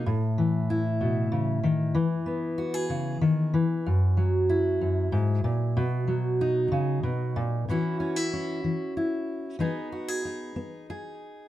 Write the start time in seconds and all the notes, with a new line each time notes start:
0.06 A2
0.38 E3
0.70 E4
1.01 B2
1.32 C#3
1.63 D#3
1.95 E3
2.26 B3
2.58 F#4
2.74 G#4
2.90 C#3
3.21 D#3
3.54 E3
3.86 F#2
4.17 F#3
4.49 E4
4.81 F#2
5.12 G#2
5.44 A#2
5.77 B2
6.08 F#3
6.41 D#4
6.72 C#3
7.03 B2
7.36 A#2
7.68 A2 E3 C#4 E4 F#4
8.00 C#4
8.16 E4
8.33 C#4
8.64 E3
8.97 E4
9.59 E3 B3 D#4 G#4
9.92 F#4
10.08 G#4
10.25 D#4
10.56 B3
10.90 G#4